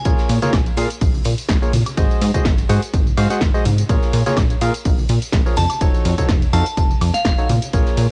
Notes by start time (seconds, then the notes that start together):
Already playing: G#5
0.05 A#1 A#3 F4 G#4 A#4 C#5, kick, closed hi-hat, ride, tambourine
0.18 snare, tambourine
0.29 A#2, open hi-hat, ride, tambourine
0.42 A#3 F4 G#4 A#4 C#5, snare, closed hi-hat, tambourine, high conga
0.53 A#1, kick, snare, closed hi-hat, ride, tambourine, high woodblock
0.66 closed hi-hat, tambourine
0.77 A#2 A#3 F4 G#4 A#4 F5, open hi-hat, ride, tambourine
0.90 closed hi-hat, tambourine
1.01 A#1, kick, closed hi-hat, open hi-hat, tambourine
1.15 tambourine, high conga
1.24 A#2, open hi-hat, ride, tambourine
1.38 closed hi-hat, tambourine
1.49 A#1, kick, snare, closed hi-hat, ride, tambourine
1.62 A#3 F4 G#4 A#4 C#5, tambourine
1.73 A#2, snare, open hi-hat, ride, tambourine, high conga
1.86 closed hi-hat, tambourine, high woodblock
1.97 G#1 G#3 F#4 G#4 C5 D#5, kick, closed hi-hat, ride, tambourine
2.10 ride, tambourine
2.21 G#2, open hi-hat, ride, tambourine
2.34 G#3 F#4 G#4 C5 D#5, kick, closed hi-hat, ride, tambourine, high conga
2.45 G#1, kick, snare, closed hi-hat, ride, tambourine
2.58 closed hi-hat, ride, tambourine
2.69 G#2 G#3 F#4 G#4 C5 F#5, open hi-hat, ride, tambourine
2.82 closed hi-hat, tambourine
2.93 G#1, kick, closed hi-hat, ride, tambourine
3.07 tambourine, high conga
3.17 G#2 G#3 F#4 G#4 C5 F5, open hi-hat, ride, tambourine, high woodblock
3.30 G#3 F#4 G#4 C5 F#5, snare, closed hi-hat, tambourine
3.41 G#1, kick, snare, closed hi-hat, ride, tambourine
3.54 G#3 F#4 G#4 C5 D#5, ride, tambourine
3.65 G#2, open hi-hat, ride, tambourine, high conga
3.78 closed hi-hat, tambourine
3.89 A#1 A#3 F4 G#4 A#4 C#5, kick, closed hi-hat, ride, tambourine
4.02 snare, tambourine
4.13 A#2, open hi-hat, ride, tambourine
4.26 A#3 F4 G#4 A#4 C#5, snare, closed hi-hat, tambourine, high conga
4.37 A#1, kick, snare, closed hi-hat, ride, tambourine, high woodblock
4.50 closed hi-hat, tambourine
4.61 A#2 A#3 F4 G#4 A#4 F5, open hi-hat, ride, tambourine
4.74 closed hi-hat, tambourine
4.85 A#1, kick, closed hi-hat, open hi-hat, tambourine
4.98 tambourine, high conga
5.08 A#2, open hi-hat, ride, tambourine
5.22 closed hi-hat, tambourine
5.33 A#1, kick, snare, closed hi-hat, ride, tambourine
5.46 F3 F4 G#4 A#4 C#5, tambourine
5.57 F2 A5, snare, open hi-hat, ride, tambourine, high conga
5.70 closed hi-hat, tambourine, high woodblock
5.81 F1 F3 D#4 F#4 A4 C#5, kick, closed hi-hat, ride, tambourine
5.95 ride, tambourine
6.05 F2, open hi-hat, ride, tambourine
6.18 F3 D#4 F#4 A4 C#5, kick, closed hi-hat, ride, tambourine, high conga
6.29 F1, kick, snare, closed hi-hat, ride, tambourine
6.42 closed hi-hat, ride, tambourine
6.53 F2 F3 D#4 F#4 A4 F5 A5, open hi-hat, ride, tambourine
6.66 closed hi-hat, tambourine
6.77 F1, kick, closed hi-hat, ride, tambourine
6.90 tambourine, high conga
7.01 F2, open hi-hat, ride, tambourine, high woodblock
7.14 F5, snare, closed hi-hat, tambourine
7.25 F1, kick, snare, closed hi-hat, ride, tambourine
7.38 D#4 F#4 A4 C#5, ride, tambourine
7.49 A#2, open hi-hat, ride, tambourine, high conga
7.62 closed hi-hat, tambourine
7.73 A#1 A#3 F4 G#4 A#4 C#5, kick, closed hi-hat, ride, tambourine
7.86 snare, tambourine
7.97 A#2, open hi-hat, ride, tambourine